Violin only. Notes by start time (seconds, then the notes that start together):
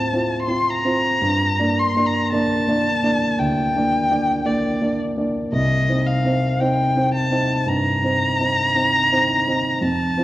Already playing: A5
0.42 C6
0.70 A#5
1.79 C6
2.07 A#5
2.33 A5
3.39 G5
4.46 D5
5.53 D#5
6.07 F5
6.60 G5
7.14 A5
7.68 A#5
9.82 A5